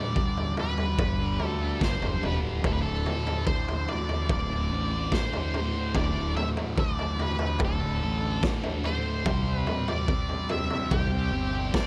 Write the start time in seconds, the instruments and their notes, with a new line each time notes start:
Already playing: distorted electric guitar G2 D3 G3, lead electric guitar D5
0.13 distorted electric guitar G2 D3 G3, kick
0.37 floor tom
0.56 distorted electric guitar G2 D3 G3, floor tom
0.60 lead electric guitar B4
0.76 distorted electric guitar D3 G3, floor tom
0.98 fingered electric bass G1, kick, floor tom
1.18 distorted electric guitar D3 G3
1.39 fingered electric bass D2, distorted electric guitar G2 D3 G3, floor tom
1.46 lead electric guitar A4
1.60 distorted electric guitar D3 G3
1.80 fingered electric bass G1, distorted electric guitar G2 D3 G3, kick, snare
1.84 lead electric guitar C5
2.00 fingered electric bass F#1, distorted electric guitar D3 G3, floor tom
2.22 fingered electric bass E1, distorted electric guitar G2 D3 G3, lead electric guitar B4, floor tom
2.43 fingered electric bass D1
2.64 fingered electric bass D1, distorted electric guitar D2 A2 D3, lead electric guitar A4, kick, floor tom
2.73 lead electric guitar B4
2.82 lead electric guitar A4
3.05 distorted electric guitar D2 A2 D3, floor tom, mid tom
3.26 distorted electric guitar A2 D3, floor tom
3.47 distorted electric guitar D2 A2 D3, lead electric guitar C5, kick
3.68 floor tom
3.88 distorted electric guitar D2 A2 D3, lead electric guitar D5, floor tom
4.09 distorted electric guitar A2 D3, floor tom
4.29 fingered electric bass D1, lead electric guitar D5, kick, floor tom
4.50 distorted electric guitar A2 D3
4.68 fingered electric bass A1, distorted electric guitar D2
4.73 distorted electric guitar A2 D3
4.92 distorted electric guitar A2 D3
5.12 distorted electric guitar D2 A2 D3, lead electric guitar C5, kick, snare
5.33 distorted electric guitar D3, floor tom
5.37 distorted electric guitar A2
5.54 distorted electric guitar D2 A2 D3, floor tom, mid tom
5.95 fingered electric bass D1, distorted electric guitar D2 A2 D3, lead electric guitar D5, kick, floor tom
6.35 distorted electric guitar D2 A2 D3, lead electric guitar E5, floor tom, mid tom
6.55 distorted electric guitar A2 D3, floor tom
6.76 distorted electric guitar D2 A2 D3, kick
6.80 lead electric guitar D5
6.99 floor tom
7.17 distorted electric guitar D2 A2 D3, floor tom
7.22 lead electric guitar B4
7.38 distorted electric guitar A2 D3, floor tom
7.59 fingered electric bass D1, kick, floor tom
7.65 lead electric guitar A4
7.79 distorted electric guitar A2 D3
8.01 fingered electric bass A1, distorted electric guitar D2 A2 D3
8.22 distorted electric guitar A2 D3
8.42 distorted electric guitar D2 A2 D3, kick, snare
8.63 distorted electric guitar A2 D3, floor tom
8.84 distorted electric guitar D2 A2, lead electric guitar C5, floor tom, mid tom
8.89 distorted electric guitar D3
9.24 fingered electric bass C2, distorted electric guitar C3 G3 C4, kick, floor tom
9.57 lead electric guitar B4
9.67 distorted electric guitar C3 G3 C4, floor tom, mid tom
9.88 distorted electric guitar G3 C4, lead electric guitar D5, floor tom
10.08 distorted electric guitar C3 G3 C4, kick
10.29 floor tom
10.48 distorted electric guitar C3 G3, lead electric guitar E5, floor tom
10.52 distorted electric guitar C4
10.70 distorted electric guitar G3 C4, floor tom
10.91 fingered electric bass C2, lead electric guitar G4, kick, floor tom
11.11 distorted electric guitar G3 C4
11.31 fingered electric bass G1, distorted electric guitar C3 G3 C4
11.53 distorted electric guitar G3 C4
11.72 distorted electric guitar C3 G3 C4, lead electric guitar D5, kick, snare